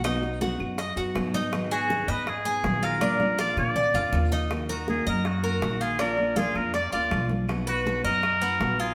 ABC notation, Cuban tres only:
X:1
M:4/4
L:1/8
Q:1/4=161
K:Ebm
V:1 name="Cuban tres"
^D2 ^F2 ^d F2 D- | ^D A2 e2 A2 F | =D2 F2 =d F2 E | z B2 e2 B2 F |
=D2 F2 =d F2 z | z =B2 ^d2 =B,2 F |]